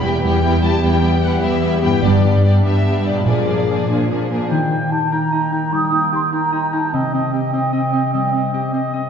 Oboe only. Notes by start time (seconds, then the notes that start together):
4.51 G5
4.72 G5
4.92 G5
5.13 G5
5.33 G5
5.53 G5
5.74 G5
5.94 G5
6.13 G5
6.33 G5
6.53 G5
6.73 G5
6.93 D#5
7.14 D#5
7.33 D#5
7.53 D#5
7.73 D#5
7.93 D#5
8.14 D#5
8.32 D#5
8.53 D#5
8.74 D#5
8.95 D#5